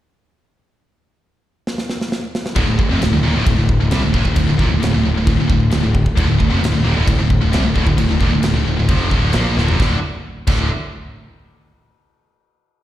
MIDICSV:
0, 0, Header, 1, 4, 480
1, 0, Start_track
1, 0, Key_signature, -1, "minor"
1, 0, Tempo, 452830
1, 795, Time_signature, 4, 2, 24, 8
1, 13602, End_track
2, 0, Start_track
2, 0, Title_t, "Distorted electric guitar"
2, 0, Program_c, 0, 30
2, 2708, Note_on_c, 0, 38, 90
2, 2716, Note_on_c, 0, 45, 112
2, 2814, Note_off_c, 0, 38, 0
2, 2815, Note_off_c, 0, 45, 0
2, 2827, Note_on_c, 0, 38, 65
2, 2828, Note_on_c, 0, 45, 73
2, 2932, Note_off_c, 0, 38, 0
2, 2941, Note_off_c, 0, 45, 0
2, 2945, Note_on_c, 0, 38, 66
2, 2954, Note_on_c, 0, 45, 74
2, 3060, Note_off_c, 0, 38, 0
2, 3065, Note_on_c, 0, 41, 91
2, 3068, Note_off_c, 0, 45, 0
2, 3072, Note_on_c, 0, 48, 104
2, 3182, Note_off_c, 0, 41, 0
2, 3186, Note_off_c, 0, 48, 0
2, 3190, Note_on_c, 0, 38, 63
2, 3195, Note_on_c, 0, 45, 70
2, 3302, Note_off_c, 0, 38, 0
2, 3309, Note_off_c, 0, 45, 0
2, 3315, Note_on_c, 0, 38, 61
2, 3322, Note_on_c, 0, 45, 69
2, 3420, Note_off_c, 0, 38, 0
2, 3424, Note_on_c, 0, 39, 90
2, 3429, Note_off_c, 0, 45, 0
2, 3433, Note_on_c, 0, 46, 98
2, 3541, Note_off_c, 0, 39, 0
2, 3546, Note_off_c, 0, 46, 0
2, 3546, Note_on_c, 0, 38, 92
2, 3557, Note_on_c, 0, 45, 104
2, 3662, Note_off_c, 0, 38, 0
2, 3664, Note_off_c, 0, 45, 0
2, 3674, Note_on_c, 0, 38, 62
2, 3677, Note_on_c, 0, 45, 77
2, 3780, Note_off_c, 0, 38, 0
2, 3788, Note_off_c, 0, 45, 0
2, 3793, Note_on_c, 0, 38, 64
2, 3801, Note_on_c, 0, 45, 74
2, 3985, Note_off_c, 0, 38, 0
2, 3989, Note_off_c, 0, 45, 0
2, 4029, Note_on_c, 0, 38, 63
2, 4031, Note_on_c, 0, 45, 69
2, 4144, Note_off_c, 0, 38, 0
2, 4148, Note_on_c, 0, 48, 91
2, 4152, Note_off_c, 0, 45, 0
2, 4157, Note_on_c, 0, 55, 110
2, 4263, Note_off_c, 0, 48, 0
2, 4268, Note_off_c, 0, 55, 0
2, 4273, Note_on_c, 0, 45, 73
2, 4276, Note_on_c, 0, 38, 65
2, 4368, Note_off_c, 0, 38, 0
2, 4377, Note_off_c, 0, 45, 0
2, 4380, Note_on_c, 0, 38, 89
2, 4390, Note_on_c, 0, 45, 99
2, 4488, Note_off_c, 0, 38, 0
2, 4498, Note_off_c, 0, 45, 0
2, 4501, Note_on_c, 0, 38, 69
2, 4511, Note_on_c, 0, 45, 76
2, 4600, Note_off_c, 0, 38, 0
2, 4608, Note_off_c, 0, 45, 0
2, 4613, Note_on_c, 0, 38, 62
2, 4620, Note_on_c, 0, 45, 74
2, 4721, Note_off_c, 0, 38, 0
2, 4728, Note_off_c, 0, 45, 0
2, 4734, Note_on_c, 0, 38, 70
2, 4740, Note_on_c, 0, 45, 77
2, 4849, Note_off_c, 0, 38, 0
2, 4853, Note_on_c, 0, 39, 89
2, 4861, Note_off_c, 0, 45, 0
2, 4866, Note_on_c, 0, 46, 101
2, 4957, Note_off_c, 0, 39, 0
2, 4961, Note_on_c, 0, 38, 69
2, 4965, Note_off_c, 0, 46, 0
2, 4969, Note_on_c, 0, 45, 73
2, 5073, Note_off_c, 0, 38, 0
2, 5082, Note_off_c, 0, 45, 0
2, 5086, Note_on_c, 0, 38, 65
2, 5094, Note_on_c, 0, 45, 70
2, 5193, Note_off_c, 0, 38, 0
2, 5197, Note_off_c, 0, 45, 0
2, 5206, Note_on_c, 0, 38, 63
2, 5210, Note_on_c, 0, 45, 68
2, 5320, Note_off_c, 0, 38, 0
2, 5322, Note_off_c, 0, 45, 0
2, 5333, Note_on_c, 0, 38, 74
2, 5335, Note_on_c, 0, 45, 78
2, 5438, Note_off_c, 0, 38, 0
2, 5449, Note_off_c, 0, 45, 0
2, 5450, Note_on_c, 0, 38, 65
2, 5462, Note_on_c, 0, 45, 75
2, 5557, Note_off_c, 0, 45, 0
2, 5559, Note_off_c, 0, 38, 0
2, 5569, Note_on_c, 0, 45, 66
2, 5571, Note_on_c, 0, 38, 63
2, 5679, Note_off_c, 0, 38, 0
2, 5685, Note_off_c, 0, 45, 0
2, 5691, Note_on_c, 0, 38, 68
2, 5698, Note_on_c, 0, 45, 68
2, 5789, Note_off_c, 0, 38, 0
2, 5792, Note_off_c, 0, 45, 0
2, 5802, Note_on_c, 0, 38, 69
2, 5804, Note_on_c, 0, 45, 71
2, 6007, Note_off_c, 0, 38, 0
2, 6008, Note_off_c, 0, 45, 0
2, 6043, Note_on_c, 0, 38, 70
2, 6047, Note_on_c, 0, 45, 80
2, 6147, Note_off_c, 0, 38, 0
2, 6159, Note_on_c, 0, 38, 69
2, 6161, Note_off_c, 0, 45, 0
2, 6174, Note_on_c, 0, 45, 72
2, 6366, Note_off_c, 0, 38, 0
2, 6373, Note_off_c, 0, 45, 0
2, 6527, Note_on_c, 0, 38, 94
2, 6531, Note_on_c, 0, 45, 99
2, 6629, Note_off_c, 0, 38, 0
2, 6636, Note_off_c, 0, 45, 0
2, 6642, Note_on_c, 0, 38, 73
2, 6649, Note_on_c, 0, 45, 66
2, 6751, Note_off_c, 0, 38, 0
2, 6754, Note_off_c, 0, 45, 0
2, 6764, Note_on_c, 0, 38, 62
2, 6767, Note_on_c, 0, 45, 65
2, 6871, Note_off_c, 0, 38, 0
2, 6876, Note_on_c, 0, 41, 101
2, 6883, Note_off_c, 0, 45, 0
2, 6887, Note_on_c, 0, 48, 102
2, 6992, Note_off_c, 0, 41, 0
2, 6996, Note_on_c, 0, 38, 63
2, 7000, Note_off_c, 0, 48, 0
2, 7004, Note_on_c, 0, 45, 78
2, 7104, Note_off_c, 0, 38, 0
2, 7108, Note_off_c, 0, 45, 0
2, 7117, Note_on_c, 0, 38, 61
2, 7121, Note_on_c, 0, 45, 79
2, 7233, Note_off_c, 0, 38, 0
2, 7237, Note_on_c, 0, 39, 91
2, 7239, Note_off_c, 0, 45, 0
2, 7243, Note_on_c, 0, 46, 106
2, 7352, Note_off_c, 0, 39, 0
2, 7356, Note_on_c, 0, 38, 90
2, 7359, Note_off_c, 0, 46, 0
2, 7363, Note_on_c, 0, 45, 99
2, 7474, Note_off_c, 0, 38, 0
2, 7478, Note_off_c, 0, 45, 0
2, 7487, Note_on_c, 0, 38, 63
2, 7491, Note_on_c, 0, 45, 77
2, 7602, Note_off_c, 0, 38, 0
2, 7610, Note_off_c, 0, 45, 0
2, 7614, Note_on_c, 0, 38, 67
2, 7623, Note_on_c, 0, 45, 70
2, 7812, Note_off_c, 0, 38, 0
2, 7816, Note_off_c, 0, 45, 0
2, 7852, Note_on_c, 0, 38, 69
2, 7860, Note_on_c, 0, 45, 82
2, 7962, Note_off_c, 0, 38, 0
2, 7966, Note_on_c, 0, 48, 89
2, 7970, Note_off_c, 0, 45, 0
2, 7974, Note_on_c, 0, 55, 111
2, 8085, Note_off_c, 0, 48, 0
2, 8089, Note_on_c, 0, 38, 66
2, 8090, Note_off_c, 0, 55, 0
2, 8094, Note_on_c, 0, 45, 73
2, 8192, Note_off_c, 0, 38, 0
2, 8200, Note_off_c, 0, 45, 0
2, 8205, Note_on_c, 0, 38, 85
2, 8212, Note_on_c, 0, 45, 99
2, 8313, Note_off_c, 0, 38, 0
2, 8324, Note_off_c, 0, 45, 0
2, 8326, Note_on_c, 0, 38, 70
2, 8337, Note_on_c, 0, 45, 66
2, 8434, Note_off_c, 0, 38, 0
2, 8439, Note_off_c, 0, 45, 0
2, 8447, Note_on_c, 0, 38, 64
2, 8452, Note_on_c, 0, 45, 77
2, 8551, Note_off_c, 0, 38, 0
2, 8559, Note_off_c, 0, 45, 0
2, 8564, Note_on_c, 0, 38, 62
2, 8572, Note_on_c, 0, 45, 70
2, 8681, Note_off_c, 0, 38, 0
2, 8685, Note_on_c, 0, 39, 86
2, 8691, Note_off_c, 0, 45, 0
2, 8695, Note_on_c, 0, 46, 105
2, 8806, Note_off_c, 0, 39, 0
2, 8811, Note_on_c, 0, 38, 63
2, 8813, Note_off_c, 0, 46, 0
2, 8819, Note_on_c, 0, 45, 74
2, 8913, Note_off_c, 0, 45, 0
2, 8914, Note_off_c, 0, 38, 0
2, 8926, Note_on_c, 0, 45, 75
2, 8927, Note_on_c, 0, 38, 62
2, 9034, Note_off_c, 0, 38, 0
2, 9044, Note_off_c, 0, 45, 0
2, 9047, Note_on_c, 0, 38, 66
2, 9057, Note_on_c, 0, 45, 65
2, 9152, Note_off_c, 0, 38, 0
2, 9153, Note_off_c, 0, 45, 0
2, 9164, Note_on_c, 0, 38, 69
2, 9166, Note_on_c, 0, 45, 70
2, 9276, Note_off_c, 0, 38, 0
2, 9280, Note_off_c, 0, 45, 0
2, 9289, Note_on_c, 0, 38, 67
2, 9293, Note_on_c, 0, 45, 73
2, 9411, Note_off_c, 0, 38, 0
2, 9415, Note_on_c, 0, 41, 92
2, 9416, Note_off_c, 0, 45, 0
2, 9420, Note_on_c, 0, 48, 86
2, 9426, Note_on_c, 0, 53, 105
2, 9647, Note_off_c, 0, 41, 0
2, 9651, Note_on_c, 0, 38, 89
2, 9656, Note_off_c, 0, 48, 0
2, 9659, Note_off_c, 0, 53, 0
2, 9663, Note_on_c, 0, 45, 99
2, 9669, Note_on_c, 0, 50, 105
2, 9892, Note_off_c, 0, 38, 0
2, 9898, Note_off_c, 0, 45, 0
2, 9900, Note_off_c, 0, 50, 0
2, 9902, Note_on_c, 0, 46, 99
2, 9910, Note_on_c, 0, 58, 100
2, 9911, Note_on_c, 0, 53, 99
2, 10137, Note_off_c, 0, 46, 0
2, 10141, Note_off_c, 0, 53, 0
2, 10141, Note_off_c, 0, 58, 0
2, 10148, Note_on_c, 0, 38, 93
2, 10155, Note_on_c, 0, 45, 95
2, 10260, Note_off_c, 0, 38, 0
2, 10263, Note_off_c, 0, 45, 0
2, 10269, Note_on_c, 0, 41, 91
2, 10276, Note_on_c, 0, 48, 102
2, 10381, Note_off_c, 0, 41, 0
2, 10384, Note_off_c, 0, 48, 0
2, 10391, Note_on_c, 0, 38, 99
2, 10399, Note_on_c, 0, 45, 93
2, 10408, Note_on_c, 0, 50, 105
2, 10533, Note_off_c, 0, 38, 0
2, 10537, Note_off_c, 0, 45, 0
2, 10541, Note_off_c, 0, 50, 0
2, 11102, Note_on_c, 0, 38, 104
2, 11107, Note_on_c, 0, 45, 97
2, 11121, Note_on_c, 0, 50, 111
2, 11297, Note_off_c, 0, 38, 0
2, 11300, Note_off_c, 0, 45, 0
2, 11307, Note_off_c, 0, 50, 0
2, 13602, End_track
3, 0, Start_track
3, 0, Title_t, "Picked electric bass"
3, 0, Program_c, 1, 34
3, 2719, Note_on_c, 1, 26, 94
3, 2829, Note_off_c, 1, 26, 0
3, 2839, Note_on_c, 1, 26, 83
3, 2948, Note_off_c, 1, 26, 0
3, 2958, Note_on_c, 1, 26, 80
3, 3068, Note_off_c, 1, 26, 0
3, 3090, Note_on_c, 1, 29, 93
3, 3188, Note_off_c, 1, 29, 0
3, 3194, Note_on_c, 1, 26, 83
3, 3306, Note_off_c, 1, 26, 0
3, 3323, Note_on_c, 1, 26, 85
3, 3420, Note_off_c, 1, 26, 0
3, 3426, Note_on_c, 1, 27, 104
3, 3541, Note_off_c, 1, 27, 0
3, 3552, Note_on_c, 1, 26, 102
3, 3664, Note_off_c, 1, 26, 0
3, 3673, Note_on_c, 1, 26, 78
3, 3775, Note_off_c, 1, 26, 0
3, 3782, Note_on_c, 1, 26, 74
3, 4010, Note_off_c, 1, 26, 0
3, 4040, Note_on_c, 1, 26, 85
3, 4146, Note_off_c, 1, 26, 0
3, 4152, Note_on_c, 1, 36, 95
3, 4264, Note_off_c, 1, 36, 0
3, 4290, Note_on_c, 1, 26, 79
3, 4385, Note_off_c, 1, 26, 0
3, 4392, Note_on_c, 1, 26, 93
3, 4503, Note_off_c, 1, 26, 0
3, 4510, Note_on_c, 1, 26, 78
3, 4615, Note_off_c, 1, 26, 0
3, 4621, Note_on_c, 1, 26, 82
3, 4737, Note_off_c, 1, 26, 0
3, 4770, Note_on_c, 1, 26, 83
3, 4858, Note_off_c, 1, 26, 0
3, 4865, Note_on_c, 1, 27, 93
3, 4979, Note_off_c, 1, 27, 0
3, 5000, Note_on_c, 1, 26, 84
3, 5107, Note_off_c, 1, 26, 0
3, 5123, Note_on_c, 1, 26, 86
3, 5229, Note_off_c, 1, 26, 0
3, 5254, Note_on_c, 1, 26, 85
3, 5354, Note_off_c, 1, 26, 0
3, 5366, Note_on_c, 1, 26, 84
3, 5470, Note_off_c, 1, 26, 0
3, 5483, Note_on_c, 1, 26, 90
3, 5579, Note_off_c, 1, 26, 0
3, 5585, Note_on_c, 1, 26, 76
3, 5699, Note_off_c, 1, 26, 0
3, 5722, Note_on_c, 1, 26, 78
3, 5817, Note_off_c, 1, 26, 0
3, 5824, Note_on_c, 1, 26, 82
3, 6049, Note_off_c, 1, 26, 0
3, 6077, Note_on_c, 1, 26, 83
3, 6185, Note_off_c, 1, 26, 0
3, 6202, Note_on_c, 1, 26, 79
3, 6418, Note_off_c, 1, 26, 0
3, 6542, Note_on_c, 1, 26, 96
3, 6656, Note_off_c, 1, 26, 0
3, 6677, Note_on_c, 1, 26, 85
3, 6784, Note_off_c, 1, 26, 0
3, 6790, Note_on_c, 1, 26, 84
3, 6900, Note_off_c, 1, 26, 0
3, 6917, Note_on_c, 1, 29, 94
3, 7021, Note_off_c, 1, 29, 0
3, 7027, Note_on_c, 1, 26, 88
3, 7139, Note_off_c, 1, 26, 0
3, 7159, Note_on_c, 1, 26, 85
3, 7258, Note_off_c, 1, 26, 0
3, 7264, Note_on_c, 1, 27, 103
3, 7377, Note_off_c, 1, 27, 0
3, 7403, Note_on_c, 1, 26, 100
3, 7489, Note_off_c, 1, 26, 0
3, 7496, Note_on_c, 1, 26, 82
3, 7612, Note_off_c, 1, 26, 0
3, 7642, Note_on_c, 1, 26, 84
3, 7858, Note_off_c, 1, 26, 0
3, 7870, Note_on_c, 1, 26, 88
3, 7980, Note_off_c, 1, 26, 0
3, 7996, Note_on_c, 1, 36, 95
3, 8103, Note_off_c, 1, 36, 0
3, 8113, Note_on_c, 1, 26, 80
3, 8216, Note_off_c, 1, 26, 0
3, 8222, Note_on_c, 1, 26, 102
3, 8330, Note_off_c, 1, 26, 0
3, 8336, Note_on_c, 1, 26, 81
3, 8452, Note_off_c, 1, 26, 0
3, 8463, Note_on_c, 1, 26, 77
3, 8576, Note_off_c, 1, 26, 0
3, 8592, Note_on_c, 1, 26, 83
3, 8686, Note_off_c, 1, 26, 0
3, 8693, Note_on_c, 1, 27, 96
3, 8810, Note_off_c, 1, 27, 0
3, 8832, Note_on_c, 1, 26, 82
3, 8933, Note_off_c, 1, 26, 0
3, 8939, Note_on_c, 1, 26, 85
3, 9054, Note_off_c, 1, 26, 0
3, 9069, Note_on_c, 1, 26, 80
3, 9179, Note_off_c, 1, 26, 0
3, 9188, Note_on_c, 1, 26, 82
3, 9299, Note_off_c, 1, 26, 0
3, 9312, Note_on_c, 1, 26, 83
3, 9413, Note_off_c, 1, 26, 0
3, 9419, Note_on_c, 1, 29, 92
3, 9645, Note_off_c, 1, 29, 0
3, 9665, Note_on_c, 1, 26, 95
3, 9889, Note_off_c, 1, 26, 0
3, 9909, Note_on_c, 1, 34, 97
3, 10131, Note_off_c, 1, 34, 0
3, 10142, Note_on_c, 1, 26, 104
3, 10255, Note_off_c, 1, 26, 0
3, 10278, Note_on_c, 1, 29, 97
3, 10379, Note_off_c, 1, 29, 0
3, 10385, Note_on_c, 1, 26, 98
3, 10520, Note_off_c, 1, 26, 0
3, 11106, Note_on_c, 1, 26, 100
3, 11330, Note_off_c, 1, 26, 0
3, 13602, End_track
4, 0, Start_track
4, 0, Title_t, "Drums"
4, 1772, Note_on_c, 9, 38, 77
4, 1878, Note_off_c, 9, 38, 0
4, 1890, Note_on_c, 9, 38, 75
4, 1996, Note_off_c, 9, 38, 0
4, 2009, Note_on_c, 9, 38, 89
4, 2115, Note_off_c, 9, 38, 0
4, 2135, Note_on_c, 9, 38, 84
4, 2241, Note_off_c, 9, 38, 0
4, 2248, Note_on_c, 9, 38, 94
4, 2354, Note_off_c, 9, 38, 0
4, 2491, Note_on_c, 9, 38, 96
4, 2597, Note_off_c, 9, 38, 0
4, 2605, Note_on_c, 9, 38, 104
4, 2711, Note_off_c, 9, 38, 0
4, 2714, Note_on_c, 9, 49, 62
4, 2715, Note_on_c, 9, 36, 119
4, 2820, Note_off_c, 9, 49, 0
4, 2821, Note_off_c, 9, 36, 0
4, 2956, Note_on_c, 9, 36, 88
4, 3062, Note_off_c, 9, 36, 0
4, 3197, Note_on_c, 9, 49, 68
4, 3210, Note_on_c, 9, 38, 106
4, 3303, Note_off_c, 9, 49, 0
4, 3316, Note_off_c, 9, 38, 0
4, 3671, Note_on_c, 9, 49, 69
4, 3674, Note_on_c, 9, 36, 117
4, 3777, Note_off_c, 9, 49, 0
4, 3780, Note_off_c, 9, 36, 0
4, 3911, Note_on_c, 9, 36, 98
4, 4017, Note_off_c, 9, 36, 0
4, 4144, Note_on_c, 9, 49, 63
4, 4157, Note_on_c, 9, 38, 123
4, 4250, Note_off_c, 9, 49, 0
4, 4263, Note_off_c, 9, 38, 0
4, 4389, Note_on_c, 9, 36, 89
4, 4495, Note_off_c, 9, 36, 0
4, 4506, Note_on_c, 9, 36, 84
4, 4612, Note_off_c, 9, 36, 0
4, 4621, Note_on_c, 9, 49, 71
4, 4626, Note_on_c, 9, 36, 103
4, 4727, Note_off_c, 9, 49, 0
4, 4732, Note_off_c, 9, 36, 0
4, 4868, Note_on_c, 9, 36, 84
4, 4974, Note_off_c, 9, 36, 0
4, 5116, Note_on_c, 9, 49, 64
4, 5129, Note_on_c, 9, 38, 117
4, 5222, Note_off_c, 9, 49, 0
4, 5235, Note_off_c, 9, 38, 0
4, 5587, Note_on_c, 9, 36, 110
4, 5587, Note_on_c, 9, 49, 62
4, 5693, Note_off_c, 9, 36, 0
4, 5693, Note_off_c, 9, 49, 0
4, 5826, Note_on_c, 9, 36, 97
4, 5932, Note_off_c, 9, 36, 0
4, 6057, Note_on_c, 9, 49, 61
4, 6070, Note_on_c, 9, 38, 116
4, 6163, Note_off_c, 9, 49, 0
4, 6176, Note_off_c, 9, 38, 0
4, 6304, Note_on_c, 9, 36, 86
4, 6410, Note_off_c, 9, 36, 0
4, 6424, Note_on_c, 9, 36, 90
4, 6530, Note_off_c, 9, 36, 0
4, 6545, Note_on_c, 9, 36, 106
4, 6553, Note_on_c, 9, 49, 67
4, 6651, Note_off_c, 9, 36, 0
4, 6659, Note_off_c, 9, 49, 0
4, 6785, Note_on_c, 9, 36, 83
4, 6891, Note_off_c, 9, 36, 0
4, 7037, Note_on_c, 9, 49, 64
4, 7050, Note_on_c, 9, 38, 117
4, 7143, Note_off_c, 9, 49, 0
4, 7156, Note_off_c, 9, 38, 0
4, 7500, Note_on_c, 9, 36, 118
4, 7504, Note_on_c, 9, 49, 69
4, 7606, Note_off_c, 9, 36, 0
4, 7610, Note_off_c, 9, 49, 0
4, 7740, Note_on_c, 9, 36, 101
4, 7846, Note_off_c, 9, 36, 0
4, 7982, Note_on_c, 9, 49, 69
4, 7995, Note_on_c, 9, 38, 119
4, 8088, Note_off_c, 9, 49, 0
4, 8101, Note_off_c, 9, 38, 0
4, 8221, Note_on_c, 9, 36, 85
4, 8327, Note_off_c, 9, 36, 0
4, 8339, Note_on_c, 9, 36, 92
4, 8445, Note_off_c, 9, 36, 0
4, 8458, Note_on_c, 9, 49, 70
4, 8459, Note_on_c, 9, 36, 100
4, 8564, Note_off_c, 9, 49, 0
4, 8565, Note_off_c, 9, 36, 0
4, 8698, Note_on_c, 9, 36, 83
4, 8804, Note_off_c, 9, 36, 0
4, 8933, Note_on_c, 9, 49, 68
4, 8946, Note_on_c, 9, 38, 113
4, 9039, Note_off_c, 9, 49, 0
4, 9052, Note_off_c, 9, 38, 0
4, 9420, Note_on_c, 9, 49, 63
4, 9422, Note_on_c, 9, 36, 119
4, 9526, Note_off_c, 9, 49, 0
4, 9528, Note_off_c, 9, 36, 0
4, 9660, Note_on_c, 9, 36, 92
4, 9766, Note_off_c, 9, 36, 0
4, 9888, Note_on_c, 9, 49, 59
4, 9901, Note_on_c, 9, 38, 114
4, 9994, Note_off_c, 9, 49, 0
4, 10007, Note_off_c, 9, 38, 0
4, 10155, Note_on_c, 9, 38, 67
4, 10261, Note_off_c, 9, 38, 0
4, 10266, Note_on_c, 9, 43, 102
4, 10372, Note_off_c, 9, 43, 0
4, 10386, Note_on_c, 9, 36, 116
4, 10401, Note_on_c, 9, 38, 93
4, 10492, Note_off_c, 9, 36, 0
4, 10507, Note_off_c, 9, 38, 0
4, 11101, Note_on_c, 9, 57, 94
4, 11105, Note_on_c, 9, 36, 106
4, 11207, Note_off_c, 9, 57, 0
4, 11211, Note_off_c, 9, 36, 0
4, 13602, End_track
0, 0, End_of_file